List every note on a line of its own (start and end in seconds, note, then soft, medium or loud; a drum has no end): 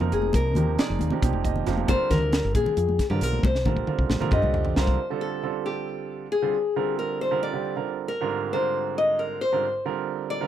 0.00 0.11 F2 medium
0.00 0.52 C3 medium
0.00 0.52 F3 medium
0.00 0.52 A#3 medium
0.00 0.52 D#4 medium
0.00 0.13 G4 medium
0.00 0.52 A#4 medium
0.00 low conga medium
0.12 0.32 F1 medium
0.12 0.35 G#4 medium
0.12 closed hi-hat medium
0.22 high conga medium
0.33 0.57 C2 medium
0.33 0.79 A#4 medium
0.33 kick medium
0.33 closed hi-hat medium
0.33 muted conga medium
0.55 0.76 D#2 medium
0.55 0.77 C3 medium
0.55 0.77 F3 medium
0.55 0.77 A#3 medium
0.55 0.77 D#4 medium
0.55 0.77 G4 medium
0.55 closed hi-hat medium
0.55 high conga medium
0.55 low conga medium
0.78 1.09 C3 medium
0.78 1.09 F3 medium
0.78 1.09 A#3 medium
0.78 1.09 D#4 medium
0.78 1.09 G#4 medium
0.78 1.63 D5 medium
0.78 muted fretless electric bass stroke soft
0.78 snare loud
0.78 closed hi-hat medium
0.90 0.99 F1 medium
0.99 1.10 D#2 medium
0.99 closed hi-hat medium
0.99 high conga medium
0.99 low conga soft
1.10 1.21 C3 medium
1.10 1.21 F3 medium
1.10 1.21 A#3 medium
1.10 1.22 D#4 medium
1.10 1.22 G4 medium
1.10 muted fretless electric bass stroke soft
1.10 muted conga medium
1.10 low conga medium
1.22 1.32 C2 medium
1.22 1.64 C3 medium
1.22 1.63 F3 medium
1.22 1.64 A#3 medium
1.22 1.64 D#4 medium
1.22 1.64 G4 medium
1.22 kick loud
1.22 closed hi-hat medium
1.33 1.63 F1 medium
1.33 high conga medium
1.44 1.65 D#5 medium
1.44 kick medium
1.44 closed hi-hat medium
1.44 low conga soft
1.56 low conga medium
1.67 1.86 F1 medium
1.67 1.87 C3 medium
1.67 1.87 F3 medium
1.67 1.87 A#3 medium
1.67 1.87 D#4 medium
1.67 1.87 G4 medium
1.67 1.87 F5 medium
1.67 snare soft
1.67 closed hi-hat medium
1.77 high conga medium
1.88 1.98 G1 medium
1.88 2.70 D3 medium
1.88 2.70 G3 medium
1.88 2.70 C4 medium
1.88 2.71 F4 medium
1.88 2.71 A#4 medium
1.88 2.12 C5 loud
1.88 kick loud
1.88 closed hi-hat medium
1.88 muted conga loud
2.00 muted fretless electric bass stroke soft
2.10 2.40 D2 medium
2.10 2.55 A#4 medium
2.10 kick medium
2.10 snare soft
2.10 closed hi-hat medium
2.10 low conga medium
2.33 snare medium
2.33 closed hi-hat medium
2.45 2.54 G1 medium
2.55 2.65 A#1 medium
2.55 3.09 G#4 medium
2.55 kick medium
2.55 closed hi-hat medium
2.55 high conga medium
2.55 low conga soft
2.66 muted fretless electric bass stroke soft
2.66 muted conga medium
2.66 low conga medium
2.77 2.97 F2 medium
2.77 closed hi-hat medium
2.89 high conga medium
2.99 kick medium
2.99 snare soft
2.99 closed hi-hat medium
2.99 low conga soft
3.10 3.20 G2 medium
3.10 3.44 D3 medium
3.10 3.44 G3 medium
3.10 3.44 C4 medium
3.10 3.44 F4 medium
3.10 3.23 G4 medium
3.10 3.44 A#4 medium
3.10 low conga medium
3.21 3.41 B1 medium
3.21 3.44 A#4 medium
3.21 closed hi-hat medium
3.33 high conga medium
3.43 3.65 C2 medium
3.43 4.73 C5 medium
3.43 kick loud
3.43 high tom soft
3.43 muted conga loud
3.55 snare soft
3.65 3.85 A#1 medium
3.65 3.86 D3 medium
3.65 3.86 G3 medium
3.65 3.86 C4 medium
3.65 3.86 F4 medium
3.65 3.86 A#4 medium
3.65 kick medium
3.65 high conga medium
3.65 low conga medium
3.77 kick soft
3.87 4.19 D3 medium
3.87 4.19 G3 medium
3.87 4.19 C4 medium
3.87 4.19 F4 medium
3.87 4.19 A#4 medium
3.87 muted fretless electric bass stroke soft
3.87 mid tom medium
3.87 low conga soft
3.99 4.09 C2 medium
3.99 kick medium
4.09 4.20 A#1 medium
4.09 snare medium
4.09 high conga medium
4.20 4.31 D3 medium
4.20 4.31 G3 medium
4.20 4.31 C4 medium
4.20 4.31 F4 medium
4.20 4.31 A#4 medium
4.20 muted fretless electric bass stroke soft
4.20 mid tom medium
4.20 muted conga medium
4.20 low conga medium
4.31 4.42 G2 medium
4.31 4.73 D3 medium
4.31 4.73 G3 medium
4.31 4.73 C4 medium
4.31 4.73 F4 medium
4.31 4.73 G4 medium
4.31 4.77 D#5 medium
4.31 kick loud
4.31 mid tom medium
4.42 4.73 C2 medium
4.42 mid tom medium
4.42 high conga medium
4.54 4.75 G5 medium
4.54 floor tom medium
4.65 floor tom medium
4.65 low conga medium
4.76 4.96 C2 medium
4.76 4.97 D3 medium
4.76 4.97 G3 medium
4.76 4.97 C4 medium
4.76 4.97 F4 medium
4.76 4.97 A#4 medium
4.76 5.22 C5 medium
4.76 4.97 F5 medium
4.76 snare medium
4.76 low conga soft
4.87 kick medium
4.87 high conga medium
4.87 low conga soft
5.10 5.41 D3 medium
5.10 5.41 G3 medium
5.10 5.41 C4 medium
5.10 5.41 F4 medium
5.10 5.41 A4 medium
5.21 5.65 A4 medium
5.43 6.25 D3 medium
5.43 6.25 G3 medium
5.43 6.25 C4 medium
5.43 6.25 F4 medium
5.43 6.25 A4 medium
5.66 6.28 G4 medium
6.32 6.94 G#4 medium
6.42 6.54 D3 medium
6.42 6.54 G3 medium
6.42 6.54 C4 medium
6.42 6.54 F4 medium
6.42 6.54 C5 medium
6.76 7.27 D3 medium
6.76 7.27 G3 medium
6.76 7.27 C4 medium
6.76 7.27 F4 medium
6.76 7.27 A#4 medium
6.99 7.19 A#4 medium
7.21 7.41 C5 medium
7.31 7.52 D3 medium
7.31 7.52 G3 medium
7.31 7.52 C4 medium
7.31 7.52 F4 medium
7.31 7.52 A#4 medium
7.43 7.89 D5 medium
7.53 7.74 D3 medium
7.53 7.74 G3 medium
7.53 7.74 C4 medium
7.53 7.74 F4 medium
7.53 7.74 G4 medium
7.76 8.09 D3 medium
7.76 8.09 G3 medium
7.76 8.09 C4 medium
7.76 8.09 F4 medium
7.76 8.09 A#4 medium
8.08 8.54 A#4 medium
8.21 8.51 G#2 medium
8.21 8.51 D3 medium
8.21 8.51 G3 medium
8.21 8.51 C4 medium
8.21 8.51 F4 medium
8.21 8.51 A#4 medium
8.53 9.35 G#2 medium
8.53 9.35 D3 medium
8.53 9.35 G3 medium
8.53 9.35 C4 medium
8.53 9.35 F4 medium
8.53 9.36 A#4 medium
8.53 8.94 C5 medium
8.98 9.20 D#5 medium
9.19 9.42 A#4 medium
9.41 10.30 C5 medium
9.52 9.64 G#2 medium
9.52 9.64 D3 medium
9.52 9.64 G3 medium
9.52 9.64 C4 medium
9.52 9.64 F4 medium
9.52 9.64 A#4 medium
9.85 10.37 D3 medium
9.85 10.37 G3 medium
9.85 10.37 C4 medium
9.85 10.37 F4 medium
9.85 10.37 A#4 medium
10.30 10.47 D5 medium
10.41 10.47 D3 medium
10.41 10.47 G3 medium
10.41 10.47 C4 medium
10.41 10.47 F4 medium
10.41 10.47 A#4 medium